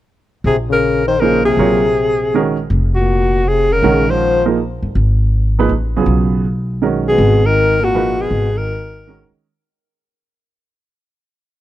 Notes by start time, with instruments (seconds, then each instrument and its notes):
0.44 upright bass A#1, trombone C3, alto saxophone G#4
0.69 trombone C#3, alto saxophone A#4
1.07 trombone D#3, alto saxophone C5
1.20 trombone C#3, upright piano F3 A#3 D#4 G#4 C5, alto saxophone A#4
1.44 trombone C3, alto saxophone G#4
1.57 upright bass A#1, upright piano F#3 C4 F4 A#4 C#5
2.34 upright piano D#3 G#3 C#4 F#4 A#4
2.70 upright bass F1
2.95 trombone A#2, alto saxophone F#4
3.47 trombone C3, alto saxophone G#4
3.71 trombone C#3, alto saxophone A#4
3.82 upright bass A#1, upright piano D#3 G#3 C#4 A#4 F#5
4.10 trombone F3, alto saxophone C5
4.45 upright piano F3 A#3 D#4 G#4 A#4
4.82 upright bass G1
4.95 upright bass G#1
5.59 upright piano F3 A#3 D#4 G#4 B4
5.69 upright bass A1
5.96 upright piano C#3 F#3 B3 F4 G#4
6.06 upright bass B1
6.82 upright piano D#3 G#3 C#4 F#4 A#4
7.09 trombone B2, alto saxophone G#4
7.18 upright bass G#1
7.45 trombone D#3, alto saxophone A#4
7.81 trombone A#2, alto saxophone F#4
7.95 upright piano F3 D#4 G#4 A#4 B4
8.19 trombone B2, alto saxophone G#4
8.31 upright bass G#1
8.55 trombone D#3, alto saxophone A#4
9.07 upright piano D#3 G#3 C#4 F#4 A#4
9.31 muted upright bass stroke